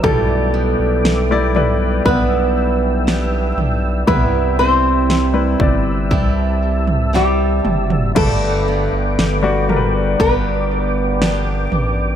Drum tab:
CC |----------------|----------------|x---------------|
SD |----o-------o---|----o-------o---|----o-------o---|
T2 |----------------|--------------o-|----------------|
FT |o-----o-o-----o-|o-----o-o--o---o|o-----o-o-----o-|
BD |o-------o-------|o-----o-o-------|o-------o-------|